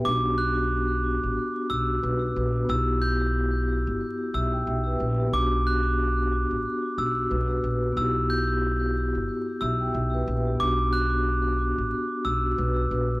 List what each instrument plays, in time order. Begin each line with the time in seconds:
Already playing: vibraphone G4
0.00 vibraphone B3
0.05 upright bass B1, vibraphone D4, glockenspiel D6
0.10 vibraphone F#4
0.38 glockenspiel F#6
1.23 upright bass A1
1.70 upright bass B1, glockenspiel E6
1.90 vibraphone F#4
2.03 upright bass B1, vibraphone B4
2.36 upright bass A#1, vibraphone B4
2.56 vibraphone F#4
2.65 vibraphone B3
2.69 upright bass B1, vibraphone E4, glockenspiel E6
2.74 vibraphone G4
3.02 glockenspiel G6
3.87 upright bass G1
4.34 upright bass B1, vibraphone E5, glockenspiel E6
4.53 vibraphone G5
4.66 upright bass B1, vibraphone E5
4.87 vibraphone B4
4.99 upright bass A#1, vibraphone B4
5.19 vibraphone G4
5.27 vibraphone B3
5.32 upright bass B1, vibraphone D4, glockenspiel D6
5.36 vibraphone F#4
5.67 glockenspiel F#6
6.51 upright bass A1
6.98 upright bass B1, glockenspiel E6
7.17 vibraphone F#4
7.30 upright bass B1, vibraphone B4
7.64 upright bass A#1, vibraphone B4
7.83 vibraphone F#4
7.92 vibraphone B3
7.97 upright bass B1, vibraphone E4, glockenspiel E6
8.02 vibraphone G4
8.30 glockenspiel G6
9.15 upright bass G1
9.61 upright bass B1, vibraphone E5, glockenspiel E6
9.81 vibraphone G5
9.94 upright bass B1, vibraphone E5
10.14 vibraphone B4
10.27 upright bass A#1
10.47 vibraphone G4
10.55 vibraphone B3
10.59 upright bass B1, vibraphone D4, glockenspiel D6
10.64 vibraphone F#4
10.93 glockenspiel F#6
11.78 upright bass A1
12.25 upright bass B1, glockenspiel E6
12.45 vibraphone F#4
12.58 upright bass B1, vibraphone B4
12.91 upright bass A#1, vibraphone B4
13.11 vibraphone F#4